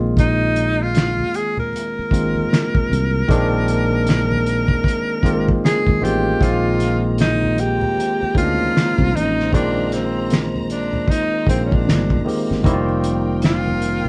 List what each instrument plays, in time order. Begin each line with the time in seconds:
Already playing: fretless electric bass A#1, tine electric piano D#3 G#3 A#3 C4 F4
0.17 tenor saxophone D#4, kick, closed hi-hat, muted conga, low conga
0.41 muted conga
0.56 closed hi-hat
0.82 tenor saxophone F4
0.95 finger snap, snare, closed hi-hat, muted conga
1.19 muted conga, high conga
1.34 tenor saxophone G#4, closed hi-hat
1.57 tenor saxophone A#4, low conga
1.73 closed hi-hat, muted conga
1.99 muted fretless electric bass stroke
2.11 fretless electric bass G#1, tine electric piano D#3 G#3 A#3 C4 F4, kick, closed hi-hat
2.35 high conga
2.50 finger snap, snare, closed hi-hat, muted conga
2.75 muted fretless electric bass stroke, kick, muted conga, low conga
2.89 fretless electric bass C2, closed hi-hat, high conga
3.28 fretless electric bass A#1, tine electric piano D#3 G#3 A#3 C4 D4, kick, closed hi-hat, low conga
3.52 muted conga
3.68 closed hi-hat
4.07 finger snap, snare, closed hi-hat
4.32 muted conga, high conga
4.46 closed hi-hat
4.68 kick, low conga
4.84 kick
4.88 closed hi-hat
5.23 fretless electric bass G#1, tine electric piano D#3 G#3 A#3 C4 F4, kick, closed hi-hat
5.48 kick, high conga
5.65 tenor saxophone G#4, finger snap, snare, closed hi-hat
5.87 fretless electric bass G#1, kick, muted conga, low conga
6.01 fretless electric bass A1, tine electric piano D#3 G#3 A#3 C4 F4, tenor saxophone G4, closed hi-hat, high conga
6.40 fretless electric bass A#1, tine electric piano D#3 G#3 A#3 C4 F4, tenor saxophone F4, string section C5 A#5, kick, closed hi-hat, muted conga, low conga
6.80 snare, closed hi-hat
7.18 tenor saxophone D#4, finger snap, snare, closed hi-hat, muted conga
7.44 high conga
7.58 tenor saxophone G4, closed hi-hat
7.81 low conga
7.97 closed hi-hat, muted conga
8.21 muted fretless electric bass stroke, muted conga
8.35 fretless electric bass D2, tine electric piano G#3 A#3 C4 C#4 D#4, tenor saxophone F4, kick, closed hi-hat
8.44 tine electric piano D4
8.60 high conga
8.75 finger snap, snare, closed hi-hat, muted conga
8.98 fretless electric bass C2, kick, muted conga, low conga
9.14 fretless electric bass A1, tenor saxophone D#4, closed hi-hat, high conga
9.40 snare
9.52 fretless electric bass A#1, tine electric piano D#3 G#3 A#3 C4 F4, tenor saxophone D4, kick, closed hi-hat, low conga
9.77 muted conga
9.92 tenor saxophone C4, snare, closed hi-hat
10.30 finger snap, snare, closed hi-hat
10.56 high conga
10.70 tenor saxophone D4, closed hi-hat
10.93 low conga
11.08 tenor saxophone D#4, kick, closed hi-hat, muted conga
11.46 fretless electric bass A#1, tine electric piano D#3 G#3 A#3 C4 F4, tenor saxophone C4, kick, closed hi-hat
11.65 tenor saxophone C#4
11.71 tenor saxophone D4, kick, high conga
11.88 fretless electric bass G1, finger snap, snare, closed hi-hat
12.10 kick, muted conga, low conga
12.25 tine electric piano D#3 G#3 A#3 C4 G4, open hi-hat, high conga
12.51 fretless electric bass G#1, snare
12.64 fretless electric bass F1, tine electric piano D#3 G3 A#3 C4 E4, string section A#4 G5, kick, closed hi-hat, muted conga, low conga
12.73 tine electric piano F4
12.89 muted conga
13.04 closed hi-hat
13.42 tenor saxophone F4, finger snap, snare, closed hi-hat
13.67 high conga
13.82 closed hi-hat
14.05 low conga